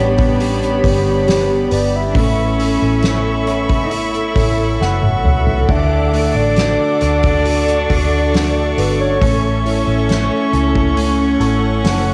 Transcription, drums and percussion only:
0.18 kick, open hi-hat
0.40 hi-hat pedal, open hi-hat
0.62 hi-hat pedal
0.84 kick, hi-hat pedal, open hi-hat
1.28 snare, hi-hat pedal, open hi-hat
1.71 hi-hat pedal, open hi-hat
2.15 kick, hi-hat pedal, open hi-hat
2.59 hi-hat pedal, open hi-hat
3.03 snare, hi-hat pedal, open hi-hat
3.47 hi-hat pedal, open hi-hat
3.69 kick, open hi-hat
3.91 hi-hat pedal, open hi-hat
4.14 hi-hat pedal
4.36 kick, hi-hat pedal, open hi-hat
4.81 snare
5.03 high tom
5.25 mid tom
5.47 floor tom
5.69 kick, crash
6.13 hi-hat pedal, open hi-hat
6.56 snare, hi-hat pedal, open hi-hat
7.01 hi-hat pedal, open hi-hat
7.23 kick, open hi-hat
7.45 hi-hat pedal, open hi-hat
7.68 hi-hat pedal
7.90 kick, hi-hat pedal, open hi-hat
8.34 snare, hi-hat pedal, open hi-hat
8.78 hi-hat pedal, open hi-hat
9.22 kick, hi-hat pedal, open hi-hat
9.66 hi-hat pedal, open hi-hat
10.09 snare, hi-hat pedal, open hi-hat
10.53 hi-hat pedal, open hi-hat
10.75 kick
10.97 hi-hat pedal, open hi-hat
11.41 hi-hat pedal, open hi-hat
11.84 snare, hi-hat pedal, open hi-hat

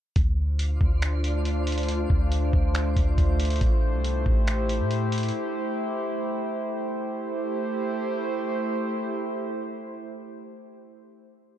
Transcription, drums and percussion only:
0.16 kick, closed hi-hat
0.59 closed hi-hat
0.81 kick
1.02 finger snap, closed hi-hat
1.24 closed hi-hat
1.45 closed hi-hat
1.67 closed hi-hat
1.72 closed hi-hat
1.78 closed hi-hat
1.83 closed hi-hat
1.88 closed hi-hat
2.10 kick
2.32 closed hi-hat
2.53 kick
2.75 finger snap, closed hi-hat
2.96 kick, closed hi-hat
3.18 kick, closed hi-hat
3.40 closed hi-hat
3.45 closed hi-hat
3.50 closed hi-hat
3.56 closed hi-hat
3.61 kick, closed hi-hat
4.04 closed hi-hat
4.26 kick
4.47 finger snap, closed hi-hat
4.69 closed hi-hat
4.91 closed hi-hat
5.12 closed hi-hat
5.18 closed hi-hat
5.23 closed hi-hat
5.29 closed hi-hat

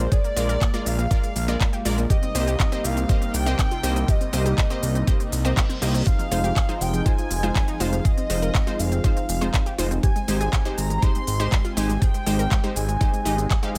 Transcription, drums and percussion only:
0.12 kick, closed hi-hat, cabasa
0.24 closed hi-hat, cabasa
0.37 open hi-hat, cabasa
0.49 closed hi-hat, cabasa
0.61 kick, clap, closed hi-hat, cabasa
0.74 closed hi-hat, cabasa
0.86 open hi-hat, cabasa
0.99 closed hi-hat, cabasa
1.11 kick, closed hi-hat, cabasa
1.23 closed hi-hat, cabasa
1.36 open hi-hat, cabasa
1.48 closed hi-hat, cabasa
1.60 kick, clap, closed hi-hat, cabasa
1.73 closed hi-hat, cabasa
1.85 open hi-hat, cabasa
1.98 closed hi-hat, cabasa
2.10 kick, closed hi-hat, cabasa
2.23 closed hi-hat, cabasa
2.35 open hi-hat, cabasa
2.47 closed hi-hat, cabasa
2.60 kick, clap, closed hi-hat, cabasa
2.72 closed hi-hat, cabasa
2.84 open hi-hat, cabasa
2.97 closed hi-hat, cabasa
3.09 kick, closed hi-hat, cabasa
3.22 closed hi-hat, cabasa
3.34 open hi-hat, cabasa
3.46 closed hi-hat, cabasa
3.59 kick, clap, closed hi-hat, cabasa
3.71 closed hi-hat, cabasa
3.84 open hi-hat, cabasa
3.96 closed hi-hat, cabasa
4.08 kick, closed hi-hat, cabasa
4.21 closed hi-hat, cabasa
4.33 open hi-hat, cabasa
4.46 closed hi-hat, cabasa
4.58 kick, clap, closed hi-hat, cabasa
4.70 closed hi-hat, cabasa
4.83 open hi-hat, cabasa
4.95 closed hi-hat, cabasa
5.07 kick, closed hi-hat, cabasa
5.20 closed hi-hat, cabasa
5.32 open hi-hat, cabasa
5.45 closed hi-hat, cabasa
5.57 kick, clap, closed hi-hat, cabasa
5.70 closed hi-hat, cabasa
5.82 open hi-hat, cabasa
5.94 closed hi-hat, cabasa
6.07 kick, closed hi-hat, cabasa
6.19 closed hi-hat, cabasa
6.32 open hi-hat, cabasa
6.44 closed hi-hat, cabasa
6.56 kick, clap, closed hi-hat, cabasa
6.69 closed hi-hat, cabasa
6.81 open hi-hat, cabasa
6.94 closed hi-hat, cabasa
7.06 kick, closed hi-hat, cabasa
7.18 closed hi-hat, cabasa
7.31 open hi-hat, cabasa
7.43 closed hi-hat, cabasa
7.55 kick, clap, closed hi-hat, cabasa
7.68 closed hi-hat, cabasa
7.80 open hi-hat, cabasa
7.93 closed hi-hat, cabasa
8.05 kick, closed hi-hat, cabasa
8.17 closed hi-hat, cabasa
8.30 open hi-hat, cabasa
8.42 closed hi-hat, cabasa
8.55 kick, clap, closed hi-hat, cabasa
8.67 closed hi-hat, cabasa
8.79 open hi-hat, cabasa
8.92 closed hi-hat, cabasa
9.04 kick, closed hi-hat, cabasa
9.17 closed hi-hat, cabasa
9.29 open hi-hat, cabasa
9.41 closed hi-hat, cabasa
9.54 kick, clap, closed hi-hat, cabasa
9.66 closed hi-hat, cabasa
9.78 open hi-hat, cabasa
9.91 closed hi-hat, cabasa
10.03 kick, closed hi-hat, cabasa
10.16 closed hi-hat, cabasa
10.28 open hi-hat, cabasa
10.41 closed hi-hat, cabasa
10.53 kick, clap, closed hi-hat, cabasa
10.65 closed hi-hat, cabasa
10.78 open hi-hat, cabasa
10.90 closed hi-hat, cabasa
11.02 kick, closed hi-hat, cabasa
11.15 closed hi-hat, cabasa
11.27 open hi-hat, cabasa
11.40 closed hi-hat, cabasa
11.52 kick, clap, closed hi-hat, cabasa
11.65 closed hi-hat, cabasa
11.77 open hi-hat, cabasa
11.89 closed hi-hat, cabasa
12.02 kick, closed hi-hat, cabasa
12.14 closed hi-hat, cabasa
12.26 open hi-hat, cabasa
12.39 closed hi-hat, cabasa
12.51 kick, clap, closed hi-hat, cabasa
12.64 closed hi-hat, cabasa
12.76 open hi-hat, cabasa
12.89 closed hi-hat, cabasa
13.01 kick, closed hi-hat, cabasa
13.13 closed hi-hat, cabasa
13.26 open hi-hat, cabasa
13.38 closed hi-hat, cabasa
13.50 kick, clap, closed hi-hat, cabasa
13.63 closed hi-hat, cabasa

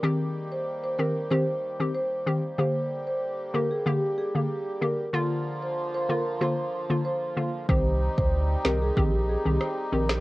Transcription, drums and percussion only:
7.69 kick
8.18 kick
8.65 cross-stick, snare
8.97 kick
9.61 cross-stick
10.09 cross-stick, snare

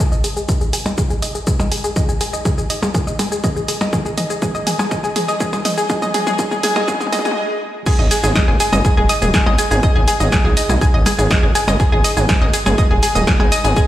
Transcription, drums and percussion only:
0.12 shaker
0.24 open hi-hat, shaker
0.37 shaker
0.49 kick, mid tom, shaker
0.61 shaker
0.73 open hi-hat, shaker
0.86 percussion blips, shaker
0.98 kick, mid tom, shaker
1.10 shaker
1.22 open hi-hat, shaker
1.35 shaker
1.47 kick, mid tom, shaker
1.60 percussion blips, shaker
1.72 open hi-hat, shaker
1.84 shaker
1.96 kick, mid tom, shaker
2.09 shaker
2.21 open hi-hat, shaker
2.33 shaker
2.45 kick, mid tom, shaker
2.58 shaker
2.70 open hi-hat, shaker
2.83 percussion blips, shaker
2.95 kick, mid tom, shaker
3.07 shaker
3.19 open hi-hat, percussion blips, shaker
3.32 shaker
3.44 kick, mid tom, shaker
3.56 shaker
3.68 open hi-hat, shaker
3.81 percussion blips, shaker
3.93 kick, mid tom, shaker
4.06 shaker
4.18 open hi-hat, mid tom, shaker
4.30 shaker
4.42 kick, mid tom, shaker
4.55 shaker
4.67 open hi-hat, mid tom, shaker
4.79 percussion blips, shaker
4.91 kick, mid tom, shaker
5.04 shaker
5.16 open hi-hat, mid tom, shaker
5.28 shaker
5.40 kick, mid tom, shaker
5.53 percussion blips, shaker
5.65 open hi-hat, mid tom, shaker
5.78 shaker
5.90 kick, mid tom, shaker
6.02 mid tom, shaker
6.14 open hi-hat, mid tom, shaker
6.27 mid tom, shaker
6.39 kick, mid tom, shaker
6.51 mid tom, shaker
6.63 open hi-hat, mid tom, shaker
6.76 mid tom, percussion blips, shaker
6.88 kick, mid tom, shaker
6.94 mid tom
7.01 mid tom, shaker
7.07 mid tom
7.13 open hi-hat, mid tom, percussion blips, shaker
7.19 mid tom
7.25 mid tom, shaker
7.31 mid tom
7.86 kick, crash, shaker
8.11 open hi-hat, shaker
8.24 shaker
8.36 kick, snare, shaker
8.60 open hi-hat, shaker
8.73 percussion blips, shaker
8.85 kick, shaker
9.09 open hi-hat, shaker
9.22 shaker
9.34 kick, snare, shaker
9.46 percussion blips
9.58 open hi-hat, shaker
9.71 shaker
9.83 kick, shaker
10.08 open hi-hat, shaker
10.20 shaker
10.32 kick, snare, shaker
10.57 open hi-hat, shaker
10.70 percussion blips, shaker
10.81 kick, shaker
11.06 open hi-hat, percussion blips, shaker
11.19 shaker
11.31 kick, snare, shaker
11.55 open hi-hat, shaker
11.68 percussion blips, shaker
11.80 kick, shaker
12.04 open hi-hat, shaker
12.17 shaker
12.29 kick, snare, shaker
12.54 open hi-hat, shaker
12.66 percussion blips, shaker
12.78 kick, shaker
13.03 open hi-hat, shaker
13.15 shaker
13.27 kick, snare, shaker
13.40 percussion blips
13.52 open hi-hat, shaker
13.65 shaker
13.76 kick, shaker

